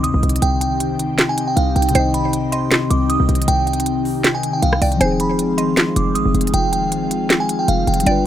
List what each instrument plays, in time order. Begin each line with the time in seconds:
Already playing: tine electric piano C3 C4 D#4 D#5, analog synth pad D#3 C4 D#4 G4, synth pluck D#5, impact
0.03 808-style bass D#2, synth bell D#6, closed hi-hat
0.14 808-style bass C2
0.23 808-style bass C2, closed hi-hat
0.29 closed hi-hat
0.36 closed hi-hat
0.42 808-style bass C2, synth bell G5, closed hi-hat
0.61 synth bell G5, closed hi-hat
0.80 closed hi-hat
0.99 closed hi-hat
1.19 snare, clap, closed hi-hat
1.29 synth bell G#5
1.38 closed hi-hat
1.48 synth bell G5
1.56 808-style bass C2, synth bell F5, closed hi-hat
1.76 808-style bass C2, synth bell G5, closed hi-hat
1.82 closed hi-hat
1.89 tine electric piano C3, closed hi-hat
1.93 808-style bass C2, tine electric piano C4 D#4, synth pluck C5, synth bell G5, closed hi-hat
1.99 tine electric piano D#5
2.14 synth bell B5, closed hi-hat
2.33 closed hi-hat
2.52 synth pluck D#5, synth bell C6, closed hi-hat
2.71 snare, clap, closed hi-hat
2.90 808-style bass C2, synth bell D6, closed hi-hat
3.10 synth bell D#6, closed hi-hat
3.20 808-style bass C2
3.29 808-style bass C2, closed hi-hat
3.35 closed hi-hat
3.42 closed hi-hat
3.48 808-style bass C2, synth bell G5, closed hi-hat
3.67 synth bell G5, closed hi-hat
3.73 closed hi-hat
3.80 closed hi-hat
3.86 closed hi-hat
4.05 open hi-hat
4.24 snare, clap, closed hi-hat
4.35 synth bell G#5
4.43 closed hi-hat
4.53 synth bell G5
4.62 808-style bass C2, synth bell F5, closed hi-hat
4.73 cross-stick
4.82 808-style bass C2, synth pluck D5, synth bell G5, closed hi-hat, open hi-hat
4.92 closed hi-hat
4.97 tine electric piano F3 C4, synth bell G#5
5.01 808-style bass F1, analog synth pad G#3 C4 F4, tine electric piano D#4, synth pluck C5, closed hi-hat
5.05 tine electric piano G#4
5.20 synth bell B5, closed hi-hat
5.39 closed hi-hat
5.58 synth pluck D#5, synth bell C6, closed hi-hat
5.77 808-style bass F2, snare, clap, closed hi-hat
5.96 808-style bass F1, synth bell D6, closed hi-hat
6.15 808-style bass G#1, synth bell D#6, closed hi-hat
6.25 808-style bass F1
6.34 808-style bass F1, closed hi-hat
6.41 closed hi-hat
6.47 closed hi-hat
6.54 808-style bass F1, synth bell G5, closed hi-hat
6.72 synth bell G5, closed hi-hat
6.92 closed hi-hat
7.11 closed hi-hat
7.30 snare, clap, closed hi-hat
7.40 synth bell G#5
7.49 closed hi-hat
7.59 synth bell G5
7.68 808-style bass F1, synth bell F5, closed hi-hat
7.87 808-style bass F1, synth bell G5, closed hi-hat
7.94 closed hi-hat
8.00 tine electric piano G3, closed hi-hat
8.06 808-style bass G1, analog synth pad D3 G3 B3, tine electric piano D4 F4, synth pluck D5, synth bell G5, closed hi-hat
8.11 tine electric piano B4